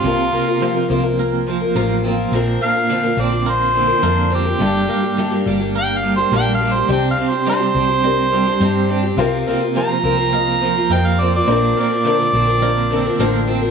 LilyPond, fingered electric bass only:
\new Staff \with { instrumentName = "Fingered electric bass" } { \clef bass \time 4/4 \key f \mixolydian \tempo 4 = 105 c,8 r4 c,4. a,,4 | bes,,8 r4 bes,,4. f,4 | g,,8 r4 g,,4. bes,,4 | c,8 r4 c,4. g,4 |
c,8 r4 c,4. f,4 | bes,,8 r4 bes,,4. a,,4 | }